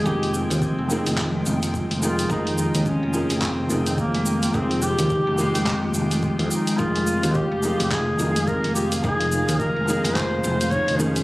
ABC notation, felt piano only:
X:1
M:4/4
L:1/8
Q:"Swing 16ths" 1/4=107
K:Fm
V:1 name="Felt piano"
[F,B,EA] z2 [F,B,EA]2 z2 [F,B,EA] | [F,B,EA]3 [F,B,EA]2 [F,B,EA]3 | [F,B,EA] z2 [F,A,B,E]2 z3 | [F,B,EA]3 [F,B,EA]2 [F,B,EA]3 |
[F,B,EA] z2 [F,B,EA]2 z2 [F,B,EA] |]